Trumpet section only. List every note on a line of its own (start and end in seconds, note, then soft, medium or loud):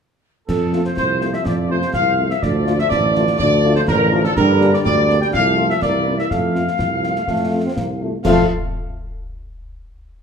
0.48 0.82 A4 medium
0.85 0.96 C5 medium
0.97 1.31 C5 medium
1.34 1.46 E5 medium
1.45 1.69 D5 medium
1.71 1.93 C5 medium
1.93 2.27 F5 medium
2.30 2.42 E5 medium
2.42 2.78 D5 medium
2.79 2.90 E5 medium
2.89 3.35 D5 medium
3.38 3.73 D5 loud
3.76 3.81 C5 loud
3.87 4.21 A#4 medium
4.25 4.36 A4 medium
4.36 4.70 A#4 loud
4.74 4.79 D5 loud
4.84 5.18 D5 loud
5.22 5.27 G5 medium
5.33 5.67 F5 loud
5.70 5.82 E5 medium
5.82 6.16 D5 medium
6.19 6.30 E5 medium
6.30 8.00 F5 medium
8.24 8.44 F5 medium